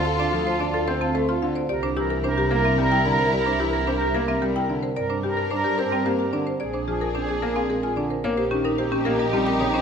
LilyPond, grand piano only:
\new Staff \with { instrumentName = "Grand piano" } { \clef bass \time 3/4 \key bes \lydian \tempo 4 = 110 r8 f16 r16 d'16 r16 c'16 r16 a16 r16 d16 r16 | r8 e16 r16 c'16 r16 bes16 r16 g16 r16 d16 r16 | r8 e16 r16 c'16 r16 bes16 r16 g16 r16 d16 r16 | r8 g16 r16 d'16 r16 c'16 r16 bes16 r16 d16 r16 |
r8 f16 r16 c'16 r16 bes16 r16 aes16 r16 d16 r16 | \key ees \mixolydian bes16 r16 ees16 r16 c'16 r16 bes16 r16 g16 r16 des16 r16 | }